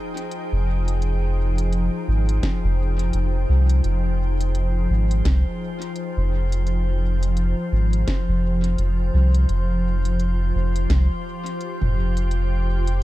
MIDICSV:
0, 0, Header, 1, 5, 480
1, 0, Start_track
1, 0, Key_signature, -4, "minor"
1, 0, Tempo, 705882
1, 693, Time_signature, 4, 2, 24, 8
1, 8860, End_track
2, 0, Start_track
2, 0, Title_t, "Synth texture"
2, 0, Program_c, 0, 99
2, 0, Note_on_c, 0, 72, 76
2, 8860, Note_off_c, 0, 72, 0
2, 8860, End_track
3, 0, Start_track
3, 0, Title_t, "Ambient pad"
3, 0, Program_c, 1, 92
3, 0, Note_on_c, 1, 53, 85
3, 0, Note_on_c, 1, 63, 80
3, 0, Note_on_c, 1, 68, 81
3, 0, Note_on_c, 1, 79, 68
3, 6454, Note_off_c, 1, 68, 0
3, 6786, Note_on_c, 1, 65, 78
3, 7082, Note_on_c, 1, 67, 77
3, 7278, Note_off_c, 1, 63, 0
3, 7390, Note_off_c, 1, 79, 0
3, 8105, Note_on_c, 1, 79, 82
3, 8860, Note_off_c, 1, 53, 0
3, 8860, Note_off_c, 1, 65, 0
3, 8860, Note_off_c, 1, 67, 0
3, 8860, Note_off_c, 1, 79, 0
3, 8860, End_track
4, 0, Start_track
4, 0, Title_t, "Sub bass"
4, 0, Program_c, 2, 38
4, 355, Note_on_c, 2, 29, 97
4, 1288, Note_off_c, 2, 29, 0
4, 1414, Note_on_c, 2, 32, 79
4, 1630, Note_off_c, 2, 32, 0
4, 1795, Note_on_c, 2, 29, 100
4, 2114, Note_off_c, 2, 29, 0
4, 2133, Note_on_c, 2, 29, 91
4, 2350, Note_off_c, 2, 29, 0
4, 2373, Note_on_c, 2, 36, 84
4, 2590, Note_off_c, 2, 36, 0
4, 2613, Note_on_c, 2, 29, 90
4, 3314, Note_off_c, 2, 29, 0
4, 3332, Note_on_c, 2, 32, 80
4, 3549, Note_off_c, 2, 32, 0
4, 3572, Note_on_c, 2, 36, 85
4, 3698, Note_off_c, 2, 36, 0
4, 4195, Note_on_c, 2, 29, 102
4, 5128, Note_off_c, 2, 29, 0
4, 5251, Note_on_c, 2, 32, 81
4, 5469, Note_off_c, 2, 32, 0
4, 5634, Note_on_c, 2, 29, 98
4, 5953, Note_off_c, 2, 29, 0
4, 5972, Note_on_c, 2, 29, 89
4, 6189, Note_off_c, 2, 29, 0
4, 6215, Note_on_c, 2, 36, 87
4, 6430, Note_off_c, 2, 36, 0
4, 6456, Note_on_c, 2, 29, 92
4, 7156, Note_off_c, 2, 29, 0
4, 7176, Note_on_c, 2, 29, 78
4, 7391, Note_off_c, 2, 29, 0
4, 7411, Note_on_c, 2, 36, 82
4, 7538, Note_off_c, 2, 36, 0
4, 8035, Note_on_c, 2, 29, 97
4, 8860, Note_off_c, 2, 29, 0
4, 8860, End_track
5, 0, Start_track
5, 0, Title_t, "Drums"
5, 117, Note_on_c, 9, 42, 52
5, 185, Note_off_c, 9, 42, 0
5, 214, Note_on_c, 9, 42, 42
5, 282, Note_off_c, 9, 42, 0
5, 598, Note_on_c, 9, 42, 49
5, 666, Note_off_c, 9, 42, 0
5, 694, Note_on_c, 9, 42, 41
5, 762, Note_off_c, 9, 42, 0
5, 1076, Note_on_c, 9, 42, 52
5, 1144, Note_off_c, 9, 42, 0
5, 1173, Note_on_c, 9, 42, 40
5, 1241, Note_off_c, 9, 42, 0
5, 1556, Note_on_c, 9, 42, 50
5, 1624, Note_off_c, 9, 42, 0
5, 1652, Note_on_c, 9, 36, 101
5, 1653, Note_on_c, 9, 38, 87
5, 1653, Note_on_c, 9, 42, 42
5, 1720, Note_off_c, 9, 36, 0
5, 1721, Note_off_c, 9, 38, 0
5, 1721, Note_off_c, 9, 42, 0
5, 2035, Note_on_c, 9, 42, 50
5, 2103, Note_off_c, 9, 42, 0
5, 2130, Note_on_c, 9, 42, 42
5, 2198, Note_off_c, 9, 42, 0
5, 2513, Note_on_c, 9, 42, 50
5, 2581, Note_off_c, 9, 42, 0
5, 2612, Note_on_c, 9, 42, 40
5, 2680, Note_off_c, 9, 42, 0
5, 2996, Note_on_c, 9, 42, 51
5, 3064, Note_off_c, 9, 42, 0
5, 3093, Note_on_c, 9, 42, 40
5, 3161, Note_off_c, 9, 42, 0
5, 3475, Note_on_c, 9, 42, 50
5, 3543, Note_off_c, 9, 42, 0
5, 3572, Note_on_c, 9, 36, 104
5, 3572, Note_on_c, 9, 38, 91
5, 3572, Note_on_c, 9, 42, 40
5, 3640, Note_off_c, 9, 36, 0
5, 3640, Note_off_c, 9, 38, 0
5, 3640, Note_off_c, 9, 42, 0
5, 3955, Note_on_c, 9, 42, 49
5, 4023, Note_off_c, 9, 42, 0
5, 4050, Note_on_c, 9, 42, 40
5, 4118, Note_off_c, 9, 42, 0
5, 4436, Note_on_c, 9, 42, 50
5, 4504, Note_off_c, 9, 42, 0
5, 4533, Note_on_c, 9, 42, 39
5, 4601, Note_off_c, 9, 42, 0
5, 4914, Note_on_c, 9, 42, 49
5, 4982, Note_off_c, 9, 42, 0
5, 5010, Note_on_c, 9, 42, 38
5, 5078, Note_off_c, 9, 42, 0
5, 5393, Note_on_c, 9, 42, 48
5, 5461, Note_off_c, 9, 42, 0
5, 5491, Note_on_c, 9, 38, 90
5, 5491, Note_on_c, 9, 42, 40
5, 5492, Note_on_c, 9, 36, 104
5, 5559, Note_off_c, 9, 38, 0
5, 5559, Note_off_c, 9, 42, 0
5, 5560, Note_off_c, 9, 36, 0
5, 5874, Note_on_c, 9, 42, 48
5, 5942, Note_off_c, 9, 42, 0
5, 5973, Note_on_c, 9, 42, 39
5, 6041, Note_off_c, 9, 42, 0
5, 6355, Note_on_c, 9, 42, 50
5, 6423, Note_off_c, 9, 42, 0
5, 6453, Note_on_c, 9, 42, 38
5, 6521, Note_off_c, 9, 42, 0
5, 6835, Note_on_c, 9, 42, 47
5, 6903, Note_off_c, 9, 42, 0
5, 6933, Note_on_c, 9, 42, 38
5, 7001, Note_off_c, 9, 42, 0
5, 7315, Note_on_c, 9, 42, 48
5, 7383, Note_off_c, 9, 42, 0
5, 7411, Note_on_c, 9, 36, 94
5, 7412, Note_on_c, 9, 38, 88
5, 7412, Note_on_c, 9, 42, 38
5, 7479, Note_off_c, 9, 36, 0
5, 7480, Note_off_c, 9, 38, 0
5, 7480, Note_off_c, 9, 42, 0
5, 7795, Note_on_c, 9, 42, 47
5, 7863, Note_off_c, 9, 42, 0
5, 7892, Note_on_c, 9, 42, 38
5, 7960, Note_off_c, 9, 42, 0
5, 8034, Note_on_c, 9, 45, 55
5, 8102, Note_off_c, 9, 45, 0
5, 8275, Note_on_c, 9, 42, 47
5, 8343, Note_off_c, 9, 42, 0
5, 8372, Note_on_c, 9, 42, 37
5, 8440, Note_off_c, 9, 42, 0
5, 8755, Note_on_c, 9, 42, 49
5, 8823, Note_off_c, 9, 42, 0
5, 8860, End_track
0, 0, End_of_file